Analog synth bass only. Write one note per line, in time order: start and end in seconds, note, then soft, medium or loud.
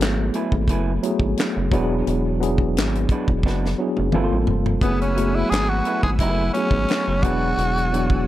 0.00 0.30 G#1 medium
0.53 0.70 G#1 medium
0.68 0.99 F#1 medium
1.20 1.35 G#1 medium
1.57 1.74 F#1 medium
1.72 2.03 E1 loud
2.07 2.78 E1 loud
2.76 3.06 G#1 medium
3.29 3.45 E1 medium
3.44 3.75 F#1 loud
3.99 4.12 F#1 medium
4.14 4.30 G1 medium
4.32 4.46 A1 medium
4.48 4.78 F1 medium
4.82 5.44 F#1 medium
5.52 5.82 G#1 medium
6.04 6.21 G#1 medium
6.19 6.50 F#1 loud
6.71 6.86 G#1 medium
7.08 7.25 F#1 medium
7.23 7.54 E1 medium
7.58 8.27 E1 medium